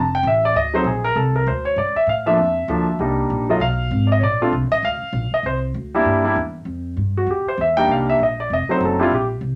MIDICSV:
0, 0, Header, 1, 4, 480
1, 0, Start_track
1, 0, Key_signature, -1, "major"
1, 0, Tempo, 306122
1, 847, Time_signature, 4, 2, 24, 8
1, 14979, End_track
2, 0, Start_track
2, 0, Title_t, "Grand piano"
2, 0, Program_c, 0, 0
2, 0, Note_on_c, 0, 81, 80
2, 199, Note_off_c, 0, 81, 0
2, 233, Note_on_c, 0, 79, 101
2, 387, Note_off_c, 0, 79, 0
2, 429, Note_on_c, 0, 76, 86
2, 686, Note_off_c, 0, 76, 0
2, 708, Note_on_c, 0, 74, 89
2, 865, Note_off_c, 0, 74, 0
2, 883, Note_on_c, 0, 75, 95
2, 1153, Note_off_c, 0, 75, 0
2, 1154, Note_on_c, 0, 54, 68
2, 1159, Note_on_c, 0, 57, 62
2, 1160, Note_on_c, 0, 60, 60
2, 1168, Note_on_c, 0, 63, 79
2, 1182, Note_on_c, 0, 72, 87
2, 1315, Note_off_c, 0, 54, 0
2, 1318, Note_off_c, 0, 57, 0
2, 1318, Note_off_c, 0, 60, 0
2, 1322, Note_off_c, 0, 63, 0
2, 1343, Note_off_c, 0, 72, 0
2, 1361, Note_on_c, 0, 68, 69
2, 1633, Note_off_c, 0, 68, 0
2, 1638, Note_on_c, 0, 70, 90
2, 1811, Note_off_c, 0, 70, 0
2, 1822, Note_on_c, 0, 69, 70
2, 2103, Note_off_c, 0, 69, 0
2, 2127, Note_on_c, 0, 70, 72
2, 2296, Note_off_c, 0, 70, 0
2, 2314, Note_on_c, 0, 72, 70
2, 2590, Note_off_c, 0, 72, 0
2, 2590, Note_on_c, 0, 73, 78
2, 2768, Note_off_c, 0, 73, 0
2, 2790, Note_on_c, 0, 74, 74
2, 3068, Note_off_c, 0, 74, 0
2, 3079, Note_on_c, 0, 76, 89
2, 3253, Note_off_c, 0, 76, 0
2, 3282, Note_on_c, 0, 77, 83
2, 3545, Note_on_c, 0, 53, 62
2, 3551, Note_on_c, 0, 57, 52
2, 3553, Note_on_c, 0, 76, 90
2, 3554, Note_off_c, 0, 77, 0
2, 3556, Note_on_c, 0, 58, 54
2, 3562, Note_on_c, 0, 62, 67
2, 3713, Note_off_c, 0, 53, 0
2, 3716, Note_off_c, 0, 57, 0
2, 3718, Note_off_c, 0, 58, 0
2, 3721, Note_off_c, 0, 62, 0
2, 4219, Note_on_c, 0, 53, 61
2, 4221, Note_on_c, 0, 57, 51
2, 4233, Note_on_c, 0, 58, 52
2, 4234, Note_on_c, 0, 62, 62
2, 4482, Note_off_c, 0, 53, 0
2, 4484, Note_off_c, 0, 57, 0
2, 4490, Note_off_c, 0, 58, 0
2, 4490, Note_off_c, 0, 62, 0
2, 4634, Note_off_c, 0, 76, 0
2, 4697, Note_on_c, 0, 55, 60
2, 4707, Note_on_c, 0, 58, 53
2, 4710, Note_on_c, 0, 62, 51
2, 4711, Note_on_c, 0, 63, 68
2, 5412, Note_off_c, 0, 55, 0
2, 5417, Note_off_c, 0, 58, 0
2, 5419, Note_off_c, 0, 62, 0
2, 5419, Note_off_c, 0, 63, 0
2, 5478, Note_on_c, 0, 54, 65
2, 5485, Note_on_c, 0, 57, 61
2, 5490, Note_on_c, 0, 65, 69
2, 5493, Note_on_c, 0, 63, 60
2, 5496, Note_on_c, 0, 75, 75
2, 5640, Note_off_c, 0, 54, 0
2, 5644, Note_off_c, 0, 57, 0
2, 5646, Note_off_c, 0, 65, 0
2, 5647, Note_off_c, 0, 63, 0
2, 5662, Note_off_c, 0, 75, 0
2, 5666, Note_on_c, 0, 77, 95
2, 6382, Note_off_c, 0, 77, 0
2, 6382, Note_on_c, 0, 74, 58
2, 6409, Note_off_c, 0, 74, 0
2, 6458, Note_on_c, 0, 75, 86
2, 6569, Note_on_c, 0, 73, 55
2, 6607, Note_off_c, 0, 73, 0
2, 6624, Note_off_c, 0, 75, 0
2, 6639, Note_on_c, 0, 74, 87
2, 6914, Note_off_c, 0, 74, 0
2, 6921, Note_on_c, 0, 57, 64
2, 6925, Note_on_c, 0, 60, 64
2, 6928, Note_on_c, 0, 62, 60
2, 6932, Note_on_c, 0, 65, 80
2, 7082, Note_off_c, 0, 57, 0
2, 7084, Note_off_c, 0, 60, 0
2, 7085, Note_off_c, 0, 62, 0
2, 7087, Note_off_c, 0, 65, 0
2, 7396, Note_on_c, 0, 75, 102
2, 7572, Note_off_c, 0, 75, 0
2, 7599, Note_on_c, 0, 77, 99
2, 8309, Note_off_c, 0, 77, 0
2, 8371, Note_on_c, 0, 75, 87
2, 8539, Note_off_c, 0, 75, 0
2, 8562, Note_on_c, 0, 72, 86
2, 8731, Note_off_c, 0, 72, 0
2, 9321, Note_on_c, 0, 55, 74
2, 9327, Note_on_c, 0, 58, 64
2, 9333, Note_on_c, 0, 62, 65
2, 9337, Note_on_c, 0, 64, 83
2, 9765, Note_off_c, 0, 55, 0
2, 9768, Note_off_c, 0, 58, 0
2, 9771, Note_off_c, 0, 62, 0
2, 9773, Note_off_c, 0, 64, 0
2, 9789, Note_on_c, 0, 55, 74
2, 9796, Note_on_c, 0, 58, 58
2, 9802, Note_on_c, 0, 62, 56
2, 9808, Note_on_c, 0, 64, 77
2, 9954, Note_off_c, 0, 55, 0
2, 9958, Note_off_c, 0, 58, 0
2, 9961, Note_off_c, 0, 62, 0
2, 9964, Note_off_c, 0, 64, 0
2, 11249, Note_on_c, 0, 66, 76
2, 11417, Note_off_c, 0, 66, 0
2, 11454, Note_on_c, 0, 67, 65
2, 11720, Note_off_c, 0, 67, 0
2, 11735, Note_on_c, 0, 72, 78
2, 11900, Note_off_c, 0, 72, 0
2, 11933, Note_on_c, 0, 76, 86
2, 12183, Note_on_c, 0, 79, 112
2, 12191, Note_on_c, 0, 55, 68
2, 12194, Note_on_c, 0, 58, 63
2, 12199, Note_off_c, 0, 76, 0
2, 12201, Note_on_c, 0, 62, 59
2, 12206, Note_on_c, 0, 63, 72
2, 12363, Note_off_c, 0, 79, 0
2, 12409, Note_on_c, 0, 77, 73
2, 12676, Note_off_c, 0, 77, 0
2, 12694, Note_on_c, 0, 76, 90
2, 12815, Note_off_c, 0, 55, 0
2, 12816, Note_off_c, 0, 58, 0
2, 12820, Note_off_c, 0, 62, 0
2, 12822, Note_off_c, 0, 63, 0
2, 12858, Note_off_c, 0, 76, 0
2, 12905, Note_on_c, 0, 75, 80
2, 13164, Note_off_c, 0, 75, 0
2, 13171, Note_on_c, 0, 74, 70
2, 13337, Note_off_c, 0, 74, 0
2, 13382, Note_on_c, 0, 75, 85
2, 13628, Note_on_c, 0, 54, 64
2, 13632, Note_on_c, 0, 57, 58
2, 13640, Note_on_c, 0, 60, 58
2, 13642, Note_off_c, 0, 75, 0
2, 13643, Note_on_c, 0, 63, 69
2, 13659, Note_on_c, 0, 72, 87
2, 13821, Note_off_c, 0, 72, 0
2, 13878, Note_on_c, 0, 69, 70
2, 14076, Note_off_c, 0, 54, 0
2, 14078, Note_off_c, 0, 57, 0
2, 14079, Note_off_c, 0, 60, 0
2, 14083, Note_off_c, 0, 63, 0
2, 14101, Note_on_c, 0, 55, 70
2, 14102, Note_on_c, 0, 60, 66
2, 14107, Note_on_c, 0, 62, 67
2, 14117, Note_on_c, 0, 64, 71
2, 14130, Note_off_c, 0, 69, 0
2, 14154, Note_on_c, 0, 65, 82
2, 14268, Note_off_c, 0, 55, 0
2, 14268, Note_off_c, 0, 60, 0
2, 14271, Note_off_c, 0, 62, 0
2, 14276, Note_off_c, 0, 64, 0
2, 14308, Note_off_c, 0, 65, 0
2, 14340, Note_on_c, 0, 67, 76
2, 14501, Note_off_c, 0, 67, 0
2, 14979, End_track
3, 0, Start_track
3, 0, Title_t, "Upright bass"
3, 0, Program_c, 1, 32
3, 0, Note_on_c, 1, 29, 86
3, 347, Note_off_c, 1, 29, 0
3, 360, Note_on_c, 1, 33, 98
3, 830, Note_off_c, 1, 33, 0
3, 850, Note_on_c, 1, 38, 77
3, 1315, Note_off_c, 1, 38, 0
3, 1324, Note_on_c, 1, 34, 85
3, 1793, Note_off_c, 1, 34, 0
3, 1812, Note_on_c, 1, 36, 85
3, 2277, Note_off_c, 1, 36, 0
3, 2296, Note_on_c, 1, 38, 89
3, 2754, Note_off_c, 1, 38, 0
3, 2763, Note_on_c, 1, 43, 79
3, 3042, Note_off_c, 1, 43, 0
3, 3240, Note_on_c, 1, 45, 84
3, 3712, Note_off_c, 1, 45, 0
3, 3724, Note_on_c, 1, 41, 77
3, 4195, Note_off_c, 1, 41, 0
3, 4203, Note_on_c, 1, 38, 95
3, 4674, Note_off_c, 1, 38, 0
3, 4687, Note_on_c, 1, 36, 73
3, 5156, Note_off_c, 1, 36, 0
3, 5171, Note_on_c, 1, 34, 82
3, 5639, Note_off_c, 1, 34, 0
3, 5645, Note_on_c, 1, 35, 82
3, 6116, Note_off_c, 1, 35, 0
3, 6129, Note_on_c, 1, 32, 93
3, 6591, Note_off_c, 1, 32, 0
3, 6601, Note_on_c, 1, 34, 78
3, 7073, Note_off_c, 1, 34, 0
3, 7091, Note_on_c, 1, 36, 82
3, 7248, Note_off_c, 1, 36, 0
3, 7248, Note_on_c, 1, 34, 52
3, 7390, Note_off_c, 1, 34, 0
3, 7400, Note_on_c, 1, 33, 68
3, 7555, Note_off_c, 1, 33, 0
3, 7570, Note_on_c, 1, 38, 80
3, 7846, Note_off_c, 1, 38, 0
3, 8038, Note_on_c, 1, 34, 93
3, 8320, Note_off_c, 1, 34, 0
3, 8516, Note_on_c, 1, 36, 71
3, 8990, Note_off_c, 1, 36, 0
3, 9005, Note_on_c, 1, 38, 86
3, 9474, Note_off_c, 1, 38, 0
3, 9487, Note_on_c, 1, 43, 76
3, 9955, Note_off_c, 1, 43, 0
3, 9970, Note_on_c, 1, 40, 89
3, 10419, Note_off_c, 1, 40, 0
3, 10429, Note_on_c, 1, 41, 76
3, 10905, Note_off_c, 1, 41, 0
3, 10924, Note_on_c, 1, 43, 76
3, 11382, Note_off_c, 1, 43, 0
3, 11391, Note_on_c, 1, 41, 79
3, 11675, Note_off_c, 1, 41, 0
3, 11879, Note_on_c, 1, 40, 85
3, 12350, Note_off_c, 1, 40, 0
3, 12358, Note_on_c, 1, 36, 74
3, 12828, Note_off_c, 1, 36, 0
3, 12841, Note_on_c, 1, 34, 76
3, 13310, Note_off_c, 1, 34, 0
3, 13327, Note_on_c, 1, 29, 76
3, 13602, Note_off_c, 1, 29, 0
3, 13805, Note_on_c, 1, 30, 88
3, 14271, Note_off_c, 1, 30, 0
3, 14282, Note_on_c, 1, 34, 78
3, 14745, Note_off_c, 1, 34, 0
3, 14754, Note_on_c, 1, 36, 81
3, 14979, Note_off_c, 1, 36, 0
3, 14979, End_track
4, 0, Start_track
4, 0, Title_t, "Muted upright bass strokes"
4, 3060, Note_on_c, 9, 29, 36
4, 3216, Note_off_c, 9, 29, 0
4, 7870, Note_on_c, 9, 29, 38
4, 8027, Note_off_c, 9, 29, 0
4, 8333, Note_on_c, 9, 29, 40
4, 8490, Note_off_c, 9, 29, 0
4, 11689, Note_on_c, 9, 29, 32
4, 11846, Note_off_c, 9, 29, 0
4, 13613, Note_on_c, 9, 29, 39
4, 13770, Note_off_c, 9, 29, 0
4, 14979, End_track
0, 0, End_of_file